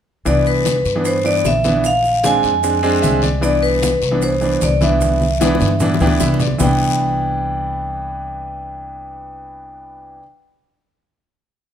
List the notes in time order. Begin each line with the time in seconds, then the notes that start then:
0.25 C2 E3 B3 D4 D5, high bongo, high conga, long guiro, maracas
0.46 B4, high bongo, high conga, maracas
0.65 high bongo, high conga, short guiro, maracas
0.85 G2, high bongo, high conga, short guiro, maracas
0.95 E3 B3 D4
1.05 C5, high bongo, high conga, long guiro, maracas
1.24 E3 B3 D4 D5, high bongo, high conga, maracas
1.45 A#1 E5, high bongo, low bongo, high conga, short guiro, maracas
1.64 E3 B3 D4, high conga, short guiro, maracas
1.84 F5, high bongo, high conga, long guiro, maracas
2.04 high bongo, high conga, maracas
2.23 G#3 C4 D4 G#5, high bongo, high conga, short guiro, maracas
2.43 F2, high bongo, high conga, short guiro, maracas
2.63 G#3 C4 D4, high bongo, high conga, long guiro, maracas
2.83 G#3 C4 D4 G#5, high bongo, high conga, maracas
3.02 C2 E5, high bongo, low bongo, high conga, short guiro, maracas
3.22 D5, high conga, short guiro, maracas
3.41 E3 B3 D4 D5, high bongo, long guiro, maracas
3.63 B4, high bongo, high conga, maracas
3.82 high bongo, high conga, short guiro, maracas
4.02 C2, high bongo, high conga, short guiro, maracas
4.11 E3 B3 D4
4.22 C5, high bongo, long guiro, maracas
4.41 E3 B3 D4, high bongo, high conga, maracas
4.61 C2 D5, high bongo, low bongo, high conga, short guiro, maracas
4.81 E3 B3 D4 E5, high conga, short guiro, maracas
5.01 high bongo, high conga, long guiro, maracas
5.21 high bongo, high conga, maracas
5.40 E3 B3 D4, high bongo, high conga, short guiro, maracas
5.55 high bongo
5.60 G2, high conga, short guiro, maracas
5.68 high bongo
5.80 E3 B3 D4, low bongo, low conga, long guiro, maracas
5.94 low bongo
6.00 D2 E3 B3 D4 G5, low conga, maracas
6.07 low bongo
6.20 C2 E5, low bongo, short guiro, maracas
6.34 low bongo
6.40 D5, low conga, short guiro, maracas
6.47 low bongo
6.58 C2 E3 B3 G5, low bongo, low conga, long guiro, maracas
6.63 D4